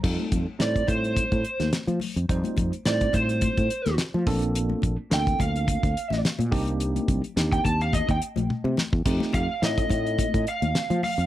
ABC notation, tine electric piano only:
X:1
M:4/4
L:1/8
Q:"Swing 16ths" 1/4=106
K:Fmix
V:1 name="Tine electric piano"
[G,CEFA] z [G,CEFc]3 z3 | [G,CEFc] z [G,CEFc]3 z2 [B,CDFA]- | [B,CDFA] z [B,CDFA]3 z2 [B,CDEG]- | [B,CDEG] z [B,CDEG]3 z3 |
[A,CEFG] z [A,CEFA]3 z3 |]